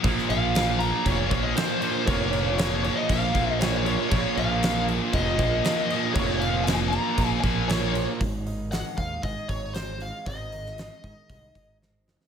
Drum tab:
CC |x-x-x-x-x-x-x-x-|x-x-x-x-x-x-x-x-|x-x-x-x-x-x-x-x-|x-x-x-x-x-x-x-x-|
HH |----------------|----------------|----------------|----------------|
SD |-o--o-------o---|----o-------o---|----o-------o---|----o-------o---|
BD |o-------o-o-----|o-------o-o-----|o-------o-o-----|o-------o-o-----|

CC |----------------|----------------|
HH |o-o-o-o-o-o-o-o-|o-o-o-o-o-o-----|
SD |----o-------o---|---oo-------o-oo|
BD |o-----o-o-o-----|o-----o-o-o-----|